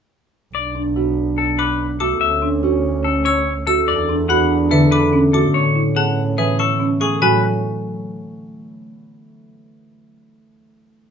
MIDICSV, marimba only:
0, 0, Header, 1, 2, 480
1, 0, Start_track
1, 0, Key_signature, 3, "major"
1, 0, Tempo, 416667
1, 631, Time_signature, 4, 2, 24, 8
1, 12794, End_track
2, 0, Start_track
2, 0, Title_t, "Marimba"
2, 0, Program_c, 0, 12
2, 866, Note_on_c, 0, 62, 59
2, 1107, Note_on_c, 0, 66, 54
2, 1181, Note_off_c, 0, 62, 0
2, 1422, Note_off_c, 0, 66, 0
2, 2310, Note_on_c, 0, 66, 56
2, 2623, Note_off_c, 0, 66, 0
2, 2788, Note_on_c, 0, 62, 68
2, 3031, Note_on_c, 0, 66, 65
2, 3102, Note_off_c, 0, 62, 0
2, 3343, Note_off_c, 0, 66, 0
2, 4231, Note_on_c, 0, 66, 69
2, 4543, Note_off_c, 0, 66, 0
2, 4712, Note_on_c, 0, 62, 76
2, 4950, Note_on_c, 0, 66, 70
2, 5024, Note_off_c, 0, 62, 0
2, 5263, Note_off_c, 0, 66, 0
2, 5427, Note_on_c, 0, 71, 72
2, 5742, Note_off_c, 0, 71, 0
2, 5907, Note_on_c, 0, 61, 88
2, 6149, Note_on_c, 0, 66, 62
2, 6222, Note_off_c, 0, 61, 0
2, 6463, Note_off_c, 0, 66, 0
2, 6629, Note_on_c, 0, 64, 61
2, 6868, Note_on_c, 0, 68, 57
2, 6943, Note_off_c, 0, 64, 0
2, 7182, Note_off_c, 0, 68, 0
2, 7349, Note_on_c, 0, 71, 66
2, 7663, Note_off_c, 0, 71, 0
2, 7830, Note_on_c, 0, 61, 71
2, 8072, Note_on_c, 0, 68, 64
2, 8143, Note_off_c, 0, 61, 0
2, 8314, Note_on_c, 0, 66, 71
2, 8384, Note_off_c, 0, 68, 0
2, 8536, Note_off_c, 0, 66, 0
2, 12794, End_track
0, 0, End_of_file